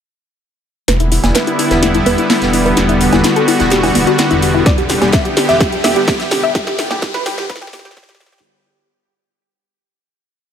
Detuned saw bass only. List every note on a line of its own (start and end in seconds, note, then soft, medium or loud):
0.88 1.19 E1 loud
1.24 1.32 E1 medium
1.71 2.01 E1 loud
2.06 2.15 E1 medium
2.42 2.72 E1 medium
2.77 3.08 E1 loud
3.13 3.21 E1 medium
3.60 3.90 E1 loud
3.95 4.04 E1 medium
4.31 4.61 E1 loud
4.66 4.97 E1 loud
5.02 5.10 E1 medium
5.49 5.79 E1 loud
5.84 5.93 E1 medium
6.20 6.50 E1 medium
6.55 6.86 E1 loud
6.91 6.99 E1 medium
7.38 7.68 E1 loud
7.73 8.04 E1 loud